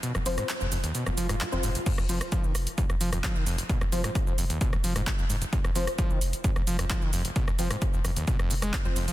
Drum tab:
CC |----------------|x---------------|----------------|----------------|
HH |x-oxx-oxx-oxx-ox|x-oxx-oxx-oxx-ox|x-oxx-oxx-oxx-ox|x-oxx-oxx-oxx-ox|
SH |xxxxxxxxxxxxxxxx|xxxxxxxxxxxxxxxx|xxxxxxxxxxxxxxxx|xxxxxxxxxxxxxxxx|
CP |----x-------x---|------------x---|------------x---|------------x---|
SD |-r-r-----r-r----|-r-r--r--r-r----|-r-r-----r-r----|-r-r-----r-r----|
BD |----------------|o---o---o---o---|o---o---o---o---|o---o---o---o---|

CC |----------------|
HH |x-oxx-oxx-oxx-ox|
SH |xxxxxxxxxxxxxxxx|
CP |------------x---|
SD |-r-r--r--r-r----|
BD |o---o---o---o---|